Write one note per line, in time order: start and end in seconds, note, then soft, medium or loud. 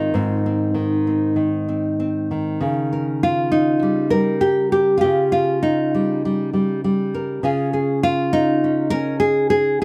0.00 0.12 G#2 medium
0.00 0.73 D#3 medium
0.00 0.13 C4 soft
0.00 2.63 D#4 medium
0.00 0.48 F4 medium
0.14 2.57 G#2 medium
0.14 0.45 C4 soft
0.46 1.06 C4 soft
0.74 1.35 D#3 medium
1.07 1.67 C4 soft
1.36 2.30 D#3 medium
1.68 1.98 C4 soft
2.00 2.58 C4 soft
2.31 3.82 D#3 soft
2.60 5.00 C#3 medium
2.93 3.23 A#4 soft
3.23 4.10 F4 medium
3.52 4.40 D#4 medium
3.83 4.12 G3 soft
4.10 5.00 G3 medium
4.10 4.96 A#4 medium
4.41 4.71 G4 medium
4.72 5.00 G4 medium
4.98 5.31 F4 medium
4.98 5.62 G4 medium
5.04 7.41 C#3 medium
5.32 6.23 F4 medium
5.63 7.44 D#4 medium
5.95 6.24 G3 soft
6.25 6.52 G3 soft
6.53 6.83 G3 medium
6.84 7.41 G3 soft
7.14 7.44 A#4 soft
7.43 9.79 C#3 medium
7.43 8.64 C#4 soft
7.43 8.03 F4 soft
7.43 7.72 G#4 soft
7.73 8.03 G#4 soft
8.03 8.90 F4 medium
8.33 9.53 D#4 medium
8.64 8.92 C#4 soft
8.90 9.80 C#4 medium
8.90 9.19 A#4 loud
9.20 9.49 G#4 loud
9.50 9.80 G#4 loud